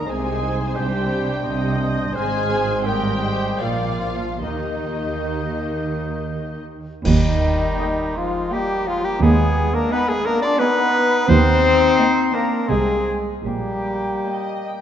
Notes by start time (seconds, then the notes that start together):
0.05 C2 C3 G#3 C4 G#4 C5 D#5 G#5 D#6
0.42 D#4
0.75 C2 C3 G3 D4 G4 D5 G5 G6
1.43 C2 C3 C5 D#5 G6
2.14 G#1 G#2 G#3 C4 G#4 C5 G#5 F6
2.50 C4 C5
2.85 G3 A#3 G4 A#4 G5 D#6
3.22 G#3 C5
3.60 A#1 A#2 F3 A#3 F4 D5 F5 D6
4.01 F4
4.42 D#2 D#3 A#3 D#4 G4 D#5 G6
7.04 D#2 D#3 G3 D#4 D#5, concert bass drum, crash
7.79 A#3 D#5 G5
8.16 F3 G#3 F4 F5
8.52 G3 A#3 G4 D#5 G5
8.86 F3 G#3 F4 F5
9.03 G3 A#3 G4 G5
9.21 D#2 G#3 B3 G#4 G#5
9.73 A#3 D4 A#4 A#5
9.91 B3 D#4 B4 D#5 G#5 B5
10.08 G#3 B3 G#4 G#5
10.25 A#3 D4 A#4 A#5
10.42 D4 F4 D5 D6
10.59 B3 D#4 B4 D#5 G#5 B5
11.26 D#2 C4 D#4 C5 C6
11.99 A#3 D#5 G5
12.33 A#3 D4 A#4 A#5
12.68 C2 C3 G#3 C4 G#4 D#5 G#5
13.45 A#1 A#2 G3 A#3 G4 G5
14.26 A#3 D#5
14.67 G5